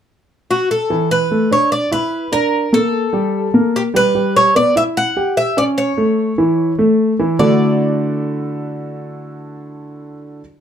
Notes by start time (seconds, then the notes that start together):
0.51 F#4
0.71 A4
0.90 E3 E4
1.11 B4
1.31 A3 A4
1.51 D4 C#5 D5
1.72 D5
1.91 E4 B4 E5
2.32 D4 A#4 D5
2.73 A#3 A4
3.13 G3 G4
3.54 A#3 A#4
3.76 G4
3.94 G3 G4 B4
4.15 G3 G4
4.36 C#5
4.55 B3 B4 D5
4.76 E4 E5
4.97 F#5
5.17 G4 G5
5.37 E5
5.57 C#4 C#5 D5
5.78 C#5
5.97 A3 A4
6.38 E3 E4
6.79 A3 A4
7.19 E3 E4
7.39 D3 A3 D4 E4 F#4 A4 D5